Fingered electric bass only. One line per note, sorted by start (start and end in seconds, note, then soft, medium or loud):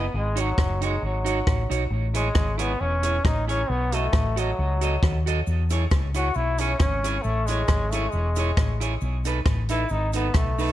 0.14 0.51 G#1 loud
0.58 0.96 F#1 medium
1.02 1.40 G#1 medium
1.47 1.67 A1 medium
1.70 1.88 B1 medium
1.90 2.28 A1 loud
2.36 2.73 G#1 medium
2.80 3.18 E1 medium
3.25 3.63 A1 medium
3.69 4.07 B1 loud
4.14 4.51 A1 medium
4.59 4.96 C#2 loud
5.03 5.40 D#2 medium
5.47 5.85 E2 loud
5.92 6.29 C#2 medium
6.36 6.73 B1 medium
6.80 7.18 G#1 medium
7.25 7.62 A1 loud
7.68 8.06 G#1 medium
8.13 8.51 E1 medium
8.57 8.95 A1 medium
9.02 9.39 B1 loud
9.46 9.84 A1 medium
9.91 10.28 G#1 medium
10.35 10.72 B1 medium